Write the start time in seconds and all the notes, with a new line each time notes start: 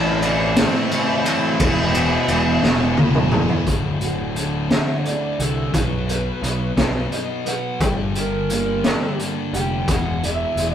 Already playing: A1 A2 E3 A3 C4 E4 A4 E5
0.02 D5
0.22 A3 C4 D4 E4 A4 D5, ride
0.56 A2 E3 A3 C4 E4 A4 C5, snare, ride
0.60 A2 A3 C4
0.91 A2 E3 A3 C4 E4 A4, ride
1.23 A2 E3 A3 E4 A4 C5, ride
1.27 A3 C4
1.59 E1 E2 B2 E3 G#3 B3 B4, kick, ride
1.63 B3 E4
1.93 E2 B2 E3 G#3 B3 E4, ride
1.98 E3
2.28 E1 E3 G#3 B3, ride
2.32 E4
2.62 E1 E2 B2 E3 G#3 B3 E4, snare
2.96 E2 B2 E3 G#3 B3 E4, high tom
3.15 mid tom
3.32 E2 B2 E3 B3 E4, mid tom
3.36 E3 G#3
3.49 floor tom
3.66 D1 D2 A2 D3, kick, closed hi-hat
4.00 D2 A2 D3 F#4, closed hi-hat
4.35 D2 A2 D3, closed hi-hat
4.69 D2 A2 D3 F#4, snare, closed hi-hat
4.74 E5
4.98 C#5
5.04 D2 A2 D3 A3 D5, closed hi-hat
5.39 C2 D2 A2 D3 F#4 A4, closed hi-hat
5.73 B1 B2 F#3 B3 B4, kick, closed hi-hat
6.08 B2 F#3 B3 B4, closed hi-hat
6.42 B1 B2 F#3 B3 D#4, closed hi-hat
6.76 B1 B2 F#3 B3 B4, kick, snare, closed hi-hat
7.11 B2 F#3 B3 F#4 D#5, closed hi-hat
7.46 B2 F#3 B3 B4 F#5, closed hi-hat
7.80 G1 G2 D3 G3 G5, kick, closed hi-hat
8.15 G2 D3 G3 G4, closed hi-hat
8.20 A#4
8.50 G2 D3 G3 A#3, closed hi-hat
8.84 G2 D3 G3 G4, snare, closed hi-hat
9.19 G2 D3 G3 D4, closed hi-hat
9.53 F1 G2 D3 G3 G4 G5, closed hi-hat
9.87 E1 E2 B2 E3 F#5, kick, closed hi-hat
10.23 E2 B2 E3 E4 E5, closed hi-hat
10.55 E1 E2 B2 G#3, closed hi-hat
10.60 E3
10.73 D5